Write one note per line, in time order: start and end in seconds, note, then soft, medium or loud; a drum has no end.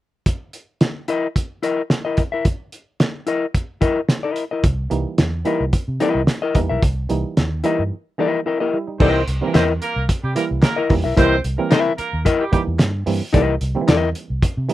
0.26 kick medium
0.26 closed hi-hat medium
0.53 closed hi-hat medium
0.81 snare loud
0.81 closed hi-hat medium
1.08 1.26 E4 medium
1.08 1.27 A#4 medium
1.08 1.27 D#5 medium
1.08 closed hi-hat medium
1.36 kick medium
1.36 closed hi-hat medium
1.63 1.81 E4 medium
1.63 1.81 A#4 medium
1.63 1.81 D#5 medium
1.63 closed hi-hat medium
1.90 snare medium
1.90 closed hi-hat medium
2.05 2.22 E4 medium
2.05 2.22 A#4 medium
2.05 2.21 D#5 medium
2.17 kick medium
2.17 closed hi-hat medium
2.32 2.46 E4 soft
2.32 2.46 A#4 soft
2.32 2.45 E5 medium
2.45 kick loud
2.45 closed hi-hat medium
2.72 closed hi-hat medium
3.00 snare loud
3.00 closed hi-hat medium
3.27 3.45 E4 medium
3.27 3.45 A#4 medium
3.27 3.46 D#5 medium
3.27 closed hi-hat medium
3.54 kick medium
3.54 closed hi-hat medium
3.81 3.99 E4 medium
3.81 4.00 A#4 medium
3.81 4.00 D#5 medium
3.81 kick medium
3.81 closed hi-hat medium
4.09 snare medium
4.09 closed hi-hat medium
4.23 4.44 E4 medium
4.23 4.44 A#4 medium
4.23 4.43 D#5 medium
4.36 closed hi-hat medium
4.51 4.65 E4 soft
4.51 4.64 A#4 soft
4.51 4.64 D#5 medium
4.64 4.88 C2 loud
4.64 kick loud
4.64 closed hi-hat medium
4.90 5.04 C2 medium
4.90 5.21 E3 medium
4.90 5.22 G3 medium
4.90 5.22 A#3 medium
4.90 5.22 D#4 medium
4.90 closed hi-hat medium
5.18 5.43 E2 medium
5.18 snare loud
5.18 closed hi-hat medium
5.45 5.76 E3 medium
5.45 5.76 G3 medium
5.45 5.77 A#3 medium
5.45 5.77 D#4 medium
5.45 5.64 E4 medium
5.45 5.64 A#4 medium
5.45 5.64 D#5 medium
5.45 closed hi-hat medium
5.61 5.72 C2 medium
5.73 muted fingered electric bass stroke soft
5.73 kick medium
5.73 closed hi-hat medium
5.88 5.99 C3 medium
6.00 6.31 E3 medium
6.00 6.31 G3 medium
6.00 6.31 A#3 medium
6.00 6.32 C4 medium
6.00 6.21 E4 medium
6.00 6.21 A#4 medium
6.00 6.22 D#5 medium
6.00 closed hi-hat medium
6.15 6.26 C2 medium
6.27 snare medium
6.27 closed hi-hat medium
6.42 6.59 E4 medium
6.42 6.59 A#4 medium
6.42 6.59 D#5 medium
6.55 6.68 E2 medium
6.55 6.86 E3 medium
6.55 6.86 G3 medium
6.55 6.86 A#3 medium
6.55 6.86 D#4 medium
6.55 kick medium
6.55 closed hi-hat medium
6.69 6.81 B1 medium
6.69 6.83 E4 soft
6.69 6.83 A#4 soft
6.69 6.82 E5 medium
6.83 7.07 C2 medium
6.83 kick loud
6.83 closed hi-hat medium
7.09 7.23 C2 medium
7.09 7.40 E3 medium
7.09 7.40 G3 medium
7.09 7.40 A#3 medium
7.09 7.41 D#4 medium
7.09 closed hi-hat medium
7.37 7.61 D#2 medium
7.37 snare medium
7.37 closed hi-hat medium
7.64 7.95 E3 medium
7.64 7.95 G3 medium
7.64 7.95 A#3 medium
7.64 7.95 D#4 medium
7.64 7.82 E4 medium
7.64 7.82 A#4 medium
7.64 7.83 D#5 medium
7.64 closed hi-hat medium
7.79 7.90 G2 medium
8.18 8.49 E3 medium
8.18 8.46 G3 medium
8.18 8.46 A#3 medium
8.18 8.46 D#4 medium
8.18 8.39 E4 medium
8.18 8.39 A#4 medium
8.18 8.40 D#5 medium
8.46 8.60 C4 soft
8.46 8.60 E4 medium
8.46 8.59 A4 medium
8.46 8.60 A#4 medium
8.46 8.96 D#5 medium
8.46 8.59 D#5 medium
8.60 8.73 A#3 medium
8.60 8.78 E4 medium
8.60 8.72 G4 medium
8.60 8.77 A#4 medium
8.60 8.77 D#5 medium
8.73 8.87 G3 medium
8.73 8.87 E4 medium
8.87 8.99 G3 soft
8.87 9.00 D#4 soft
9.00 9.24 C2 loud
9.00 9.23 E3 medium
9.00 9.23 G3 medium
9.00 9.23 A#3 medium
9.00 9.22 C4 loud
9.00 9.24 D#4 loud
9.00 9.20 E4 medium
9.00 9.21 A#4 medium
9.00 9.21 C5 loud
9.00 9.21 D#5 medium
9.00 kick medium
9.00 crash loud
9.28 9.40 C2 medium
9.28 closed hi-hat medium
9.41 9.47 D#3 medium
9.41 9.95 G3 medium
9.41 9.95 A#3 medium
9.41 9.52 A#3 medium
9.41 9.95 C4 loud
9.41 9.53 A#4 medium
9.47 9.98 E3 medium
9.54 9.78 E2 medium
9.54 9.64 C4 medium
9.54 9.72 E4 medium
9.54 9.72 A#4 medium
9.54 9.64 C5 medium
9.54 9.73 D#5 medium
9.54 snare medium
9.54 clap medium
9.54 closed hi-hat medium
9.82 10.03 A#3 loud
9.82 10.03 A#4 loud
9.82 closed hi-hat medium
9.96 10.07 C2 medium
10.09 kick medium
10.09 closed hi-hat medium
10.23 10.35 C3 medium
10.23 10.33 G3 medium
10.23 10.34 G4 medium
10.36 10.66 E3 medium
10.36 10.66 G3 medium
10.36 10.45 A#3 medium
10.36 10.67 A#3 medium
10.36 10.67 E4 medium
10.36 10.45 A#4 medium
10.36 closed hi-hat medium
10.51 10.62 C2 medium
10.62 10.84 A#3 loud
10.62 10.84 A#4 loud
10.62 snare loud
10.62 clap medium
10.62 closed hi-hat medium
10.76 10.94 E4 medium
10.76 10.94 A#4 medium
10.76 10.93 D#5 medium
10.90 11.03 E2 medium
10.90 11.06 E3 medium
10.90 11.06 G3 medium
10.90 11.06 A#3 medium
10.90 11.06 D#4 medium
10.90 kick medium
10.90 open hi-hat medium
11.04 11.16 B1 medium
11.04 11.15 E4 soft
11.04 11.16 A#4 soft
11.04 11.17 E5 medium
11.17 11.41 C2 medium
11.17 11.40 E3 loud
11.17 11.40 G3 medium
11.17 11.40 A#3 medium
11.17 11.39 C4 loud
11.17 11.35 E4 medium
11.17 11.41 E4 loud
11.17 11.35 A#4 medium
11.17 11.39 C5 loud
11.17 11.36 D#5 medium
11.17 kick loud
11.17 closed hi-hat medium
11.44 11.57 C2 medium
11.44 closed hi-hat medium
11.58 12.11 E3 medium
11.58 12.12 G3 medium
11.58 11.69 A#3 medium
11.58 12.12 A#3 medium
11.58 12.12 C4 loud
11.58 11.68 A#4 medium
11.70 11.79 C4 medium
11.70 11.91 E4 medium
11.70 11.92 A#4 medium
11.70 11.80 C5 medium
11.70 11.92 E5 loud
11.70 snare medium
11.70 clap medium
11.70 closed hi-hat medium
11.98 12.20 A#3 medium
11.98 12.20 A#4 loud
11.98 muted fingered electric bass stroke soft
11.98 closed hi-hat medium
12.13 12.24 D#2 medium
12.25 12.43 E4 medium
12.25 12.43 A#4 medium
12.25 12.44 D#5 medium
12.25 kick medium
12.25 closed hi-hat medium
12.40 12.50 G3 medium
12.40 12.50 G4 medium
12.52 12.83 E3 medium
12.52 12.61 G3 medium
12.52 12.83 G3 medium
12.52 12.83 A#3 medium
12.52 12.84 D#4 medium
12.52 12.61 G4 medium
12.52 muted fingered electric bass stroke soft
12.52 kick medium
12.52 closed hi-hat medium
12.67 12.78 E2 medium
12.79 13.04 G2 loud
12.79 snare loud
12.79 clap medium
12.79 closed hi-hat medium
13.06 13.20 G2 medium
13.06 13.22 E3 medium
13.06 13.23 G3 medium
13.06 13.23 A#3 medium
13.06 13.23 C4 medium
13.06 open hi-hat medium
13.33 13.58 C2 loud
13.33 13.57 E3 medium
13.33 13.57 G3 medium
13.33 13.57 A#3 medium
13.33 13.57 D#4 loud
13.33 13.54 E4 medium
13.33 13.54 A#4 medium
13.33 13.54 D#5 medium
13.33 kick medium
13.33 closed hi-hat loud
13.61 13.74 C2 loud
13.61 closed hi-hat medium
13.75 13.81 D#3 medium
13.75 14.28 G3 medium
13.75 14.29 A#3 medium
13.75 14.29 C4 loud
13.81 14.31 E3 medium
13.87 14.12 E2 medium
13.87 14.08 E4 medium
13.87 14.09 A#4 medium
13.87 14.09 D#5 medium
13.87 snare loud
13.87 clap medium
13.87 closed hi-hat medium
14.15 closed hi-hat medium
14.30 14.41 C2 medium
14.43 muted fingered electric bass stroke soft
14.43 kick medium
14.43 closed hi-hat medium
14.57 14.68 C3 loud
14.69 14.73 E3 medium
14.69 14.73 G3 medium
14.69 14.73 A#3 medium
14.69 14.73 D#4 medium
14.69 closed hi-hat medium